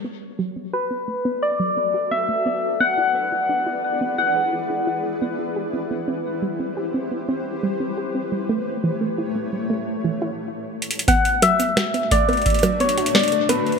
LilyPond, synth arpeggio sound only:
\new Staff \with { instrumentName = "Synth arpeggio sound" } { \time 4/4 \key b \minor \tempo 4 = 87 b16 r16 fis16 b16 fis'16 b16 a16 b16 r16 fis16 b16 fis'16 b16 a16 b16 r16 | b16 e'16 b'16 e'16 d'16 e'16 r16 b16 e'16 b'16 e'16 d'16 e'16 r16 b16 e'16 | g'16 c'16 b16 c'16 r16 g16 c'16 g'16 c'16 b16 c'16 r16 g16 c'16 g'16 c'16 | g16 a16 r16 e16 a16 e'16 a16 g16 a16 r16 e16 e'16 r4 |
b16 r16 fis16 b16 fis'16 b16 a16 b16 r16 fis16 b16 fis'16 b16 a16 b16 r16 | }